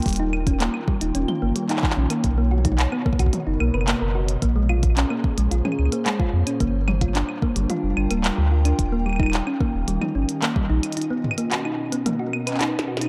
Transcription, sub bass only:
X:1
M:4/4
L:1/16
Q:1/4=110
K:Ebmix
V:1 name="Sub bass" clef=bass
E,,,4- E,,, z2 E,,, E,,, z G,,, z3 B,,, z | =B,,,4- B,,, z2 B,,, z ^F,,, B,,, F,,,2 F,,,3 | B,,,4- B,,, z2 B,,, B,,, z D,, z3 F,, z | G,,,4- G,,, z2 G,,, z F,,, G,,, =D,,,2 =D,,3 |
E,,,4- E,,, z2 E,,, E,,, z G,,, z3 B,,, z | z16 |]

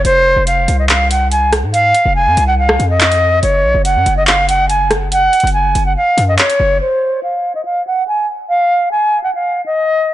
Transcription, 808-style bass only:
X:1
M:4/4
L:1/16
Q:1/4=142
K:Gblyd
V:1 name="808-style bass" clef=bass
F,,,3 F,,,3 C,,8- C,, A,,- | A,,2 z F,,,2 F,, C,,4 F,,6 | G,,,2 B,,, G,,,2 G,, G,,,8- G,,,2- | G,,,2 z G,,,3 G,,,2 z2 G,,2 z2 G,,,2 |
z16 | z16 |]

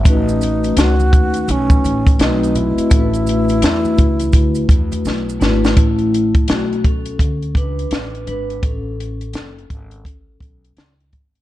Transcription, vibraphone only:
X:1
M:4/4
L:1/8
Q:"Swing 16ths" 1/4=84
K:A
V:1 name="Vibraphone"
[A,C^DFB]6 [A,=CFB^d]2 | [A,DEFAB]6- [A,DEFAB] [A,DEFB] | [A,E]2 [A,F] [CA]2 [DB]2 [DB] | [CA]6 z2 |]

